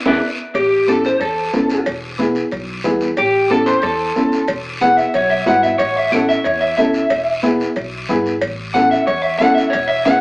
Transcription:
0.05 0.18 E2 medium
0.05 0.16 D4 medium
0.05 0.16 E4 loud
0.05 0.17 G#4 loud
0.05 0.17 B4 medium
0.05 0.17 D5 medium
0.05 0.17 E5 medium
0.05 high conga loud
0.05 high timbale loud
0.05 long guiro medium
0.54 1.07 A1 medium
0.54 0.87 G4 medium
0.54 cowbell medium
0.54 high conga soft
0.54 long guiro medium
0.87 1.11 C#4 medium
0.87 1.11 E4 medium
0.87 1.11 A4 medium
0.87 1.04 A4 medium
0.87 high conga medium
0.87 short guiro medium
1.04 1.21 C5 medium
1.04 short guiro medium
1.20 1.47 E2 medium
1.20 1.85 A4 medium
1.20 cowbell medium
1.20 high conga soft
1.20 long guiro medium
1.53 1.80 F#1 medium
1.53 1.76 C#4 medium
1.53 1.77 E4 medium
1.53 1.77 A4 medium
1.53 high conga medium
1.53 low timbale medium
1.53 short guiro medium
1.70 short guiro medium
1.86 2.39 E1 medium
1.86 cowbell loud
1.86 high conga soft
1.86 long guiro medium
2.18 2.42 B3 medium
2.18 2.42 E4 medium
2.18 2.42 G#4 medium
2.18 high conga medium
2.18 short guiro medium
2.35 short guiro medium
2.51 2.78 B1 medium
2.51 cowbell medium
2.51 high conga soft
2.51 long guiro medium
2.84 3.11 E2 medium
2.84 3.08 B3 medium
2.84 3.08 E4 medium
2.84 3.08 G#4 medium
2.84 high conga medium
2.84 low conga medium
2.84 short guiro medium
3.01 short guiro medium
3.17 3.70 A1 medium
3.17 3.50 G4 medium
3.17 cowbell medium
3.17 high conga soft
3.17 long guiro medium
3.50 3.73 C#4 medium
3.50 3.73 E4 medium
3.50 3.74 A4 medium
3.50 3.67 A4 medium
3.50 high conga medium
3.50 short guiro medium
3.66 3.83 C5 medium
3.66 short guiro medium
3.82 4.10 E2 medium
3.82 4.47 A4 medium
3.82 cowbell medium
3.82 high conga soft
3.82 long guiro medium
4.15 4.43 C#2 medium
4.15 4.39 C#4 medium
4.15 4.39 E4 medium
4.15 4.39 A4 medium
4.15 high conga medium
4.15 short guiro medium
4.32 short guiro medium
4.48 5.01 E1 medium
4.48 cowbell loud
4.48 high conga soft
4.48 long guiro medium
4.80 5.04 B3 medium
4.80 5.05 E4 medium
4.80 5.05 G#4 medium
4.80 4.97 F#5 loud
4.80 high conga medium
4.80 short guiro medium
4.97 5.13 E5 medium
4.97 short guiro medium
5.14 5.41 B1 medium
5.14 5.31 C#5 medium
5.14 cowbell medium
5.14 high conga soft
5.14 long guiro medium
5.30 5.46 E5 medium
5.46 5.74 G#1 medium
5.46 5.70 B3 medium
5.46 5.70 E4 medium
5.46 5.70 F#4 medium
5.46 5.63 F#5 medium
5.46 high conga medium
5.46 low conga medium
5.46 low timbale medium
5.46 short guiro medium
5.63 5.78 E5 medium
5.63 short guiro medium
5.78 6.33 A1 medium
5.78 5.96 C#5 medium
5.78 cowbell medium
5.78 high conga soft
5.78 long guiro medium
5.96 6.12 E5 medium
6.12 6.36 C#4 medium
6.12 6.36 E4 medium
6.12 6.36 A4 medium
6.12 6.28 F#5 loud
6.12 high conga medium
6.12 short guiro medium
6.29 6.45 E5 medium
6.29 short guiro medium
6.44 6.72 E2 loud
6.44 6.61 C#5 medium
6.44 cowbell medium
6.44 high conga soft
6.44 long guiro medium
6.61 6.76 E5 medium
6.77 7.05 C#2 medium
6.77 7.01 C#4 medium
6.77 7.01 E4 medium
6.77 7.02 A4 medium
6.77 7.41 E5 medium
6.77 high conga medium
6.77 short guiro medium
6.94 short guiro medium
7.10 7.63 E1 medium
7.10 cowbell loud
7.10 high conga soft
7.10 long guiro medium
7.42 7.66 B3 medium
7.42 7.66 E4 medium
7.42 7.67 G#4 loud
7.42 high conga medium
7.42 short guiro medium
7.60 short guiro medium
7.76 8.03 B1 loud
7.76 cowbell medium
7.76 high conga soft
7.76 long guiro medium
8.09 8.35 G#1 medium
8.09 8.32 B3 medium
8.09 8.32 E4 medium
8.09 8.33 G#4 loud
8.09 high conga medium
8.09 low conga medium
8.09 short guiro medium
8.26 short guiro medium
8.41 8.94 A1 medium
8.41 cowbell loud
8.41 high conga soft
8.41 long guiro medium
8.74 8.98 C#4 medium
8.74 8.98 E4 medium
8.74 8.98 A4 medium
8.74 8.91 F#5 loud
8.74 high conga medium
8.74 short guiro medium
8.91 9.06 E5 medium
8.91 short guiro medium
9.07 9.34 E2 medium
9.07 9.22 C#5 medium
9.07 cowbell medium
9.07 high conga soft
9.07 long guiro medium
9.22 9.38 E5 medium
9.39 9.67 C#2 medium
9.39 9.64 C#4 medium
9.39 9.63 E4 medium
9.39 9.64 A4 medium
9.39 9.54 F#5 loud
9.39 high conga medium
9.39 short guiro medium
9.55 9.72 E5 medium
9.55 short guiro medium
9.70 9.88 C#5 medium
9.70 cowbell loud
9.70 high conga soft
9.70 long guiro medium
9.74 10.21 E1 medium
9.88 10.05 E5 medium
10.05 10.21 B3 medium
10.05 10.21 E4 medium
10.05 10.21 G#4 medium
10.05 10.21 F#5 loud
10.05 high conga medium
10.05 high timbale medium
10.05 short guiro medium

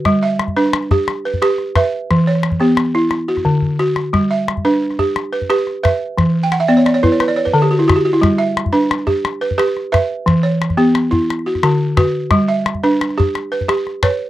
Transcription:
0.00 0.22 B4 medium
0.05 0.39 G3 medium
0.05 calabash thump medium
0.05 calabash click medium
0.23 0.74 E5 medium
0.39 calabash click medium
0.48 calabash thump medium
0.57 0.91 D4 medium
0.57 1.08 B4 medium
0.66 calabash click soft
0.73 calabash click medium
0.83 calabash click soft
0.91 1.25 G4 medium
0.91 calabash thump medium
0.91 calabash click soft
1.08 calabash click medium
1.25 1.41 B4 medium
1.34 calabash thump soft
1.42 1.76 G4 medium
1.42 1.75 B4 medium
1.42 calabash click medium
1.50 calabash click soft
1.58 calabash click soft
1.76 2.10 B4 medium
1.76 2.27 E5 medium
1.76 calabash thump medium
1.76 calabash click medium
2.11 2.44 E3 medium
2.11 calabash thump medium
2.11 calabash click medium
2.27 2.78 C#5 medium
2.35 calabash click soft
2.43 calabash click medium
2.52 calabash thump soft
2.60 2.95 B3 medium
2.60 3.12 G4 medium
2.60 calabash click soft
2.77 calabash click medium
2.85 calabash click soft
2.95 3.12 E4 medium
2.95 calabash click soft
3.11 calabash click medium
3.28 3.78 F#4 medium
3.28 calabash click soft
3.37 calabash thump soft
3.37 calabash click soft
3.45 3.79 D3 medium
3.45 calabash thump soft
3.62 calabash thump soft
3.79 4.14 F#4 medium
3.79 calabash click soft
3.96 calabash click medium
4.13 4.47 G3 medium
4.13 calabash thump medium
4.13 calabash click medium
4.31 4.82 E5 medium
4.48 calabash click medium
4.57 calabash thump soft
4.65 4.99 D4 medium
4.65 5.16 B4 medium
4.74 calabash click soft
4.91 calabash click soft
4.99 5.33 G4 medium
4.99 calabash thump medium
4.99 calabash click soft
5.16 calabash click medium
5.33 5.49 B4 medium
5.42 calabash thump soft
5.50 5.84 G4 medium
5.50 5.82 B4 medium
5.50 calabash click medium
5.59 calabash click soft
5.67 calabash click soft
5.83 6.18 B4 medium
5.83 6.35 E5 medium
5.83 calabash thump medium
5.83 calabash click medium
6.18 6.52 E3 medium
6.18 calabash thump medium
6.18 calabash click medium
6.43 6.59 G5 medium
6.52 6.68 F#5 medium
6.52 calabash click medium
6.60 6.76 E5 medium
6.68 7.03 B3 medium
6.68 6.84 D5 medium
6.77 6.93 C#5 medium
6.77 calabash click soft
6.86 7.02 D5 medium
6.86 calabash click medium
6.94 7.10 C#5 medium
6.94 calabash click soft
7.03 7.20 E4 medium
7.03 7.19 B4 medium
7.03 calabash thump medium
7.03 calabash click soft
7.12 7.28 C#5 medium
7.20 7.36 B4 medium
7.20 calabash click medium
7.28 7.44 D5 medium
7.36 7.53 C#5 medium
7.45 7.61 B4 medium
7.45 calabash thump soft
7.54 7.88 D3 medium
7.54 7.70 A4 medium
7.62 7.78 G4 medium
7.62 calabash click soft
7.71 7.86 F#4 medium
7.71 calabash click soft
7.79 7.95 E4 medium
7.88 8.04 F#4 medium
7.88 calabash thump medium
7.88 calabash click medium
7.96 8.12 G4 medium
8.05 8.21 F#4 medium
8.13 8.29 E4 medium
8.21 8.56 G3 medium
8.21 calabash thump medium
8.21 calabash click medium
8.38 8.90 E5 medium
8.57 calabash click medium
8.66 calabash thump medium
8.73 9.07 D4 medium
8.73 9.24 B4 medium
8.83 calabash click soft
8.91 calabash click medium
8.99 calabash click soft
9.07 9.41 G4 medium
9.07 calabash thump medium
9.07 calabash click soft
9.25 calabash click medium
9.41 9.57 B4 medium
9.51 calabash thump soft
9.58 9.92 G4 medium
9.58 9.91 B4 medium
9.58 calabash click medium
9.68 calabash click soft
9.77 calabash click soft
9.92 10.27 B4 medium
9.92 10.44 E5 medium
9.92 calabash thump medium
9.92 calabash click medium
10.26 10.61 E3 medium
10.26 calabash thump medium
10.26 calabash click medium
10.43 10.95 C#5 medium
10.62 calabash click medium
10.70 calabash thump soft
10.70 calabash click soft
10.77 11.12 B3 medium
10.77 11.29 G4 medium
10.95 calabash click medium
11.11 11.29 E4 medium
11.11 calabash thump medium
11.22 calabash click soft
11.30 calabash click medium
11.39 calabash click soft
11.46 11.62 F#4 medium
11.55 calabash thump soft
11.55 calabash click soft
11.63 11.98 D3 medium
11.63 11.96 F#4 medium
11.63 calabash click medium
11.97 12.32 F#4 medium
11.97 12.49 B4 medium
11.97 calabash thump medium
11.97 calabash click medium
12.31 12.66 G3 medium
12.31 calabash thump medium
12.31 calabash click medium
12.48 13.00 E5 medium
12.66 calabash click medium
12.75 calabash thump medium
12.83 13.18 D4 medium
12.83 13.35 B4 medium
12.93 calabash click soft
13.01 calabash click medium
13.10 calabash click soft
13.18 13.52 G4 medium
13.18 calabash thump medium
13.18 calabash click soft
13.35 calabash click medium
13.52 14.02 B4 medium
13.61 calabash thump medium
13.68 14.03 G4 medium
13.68 calabash click medium
13.78 calabash click soft
13.87 calabash click soft
14.03 14.30 B4 medium
14.03 14.30 C#5 medium
14.03 calabash thump medium
14.03 calabash click medium

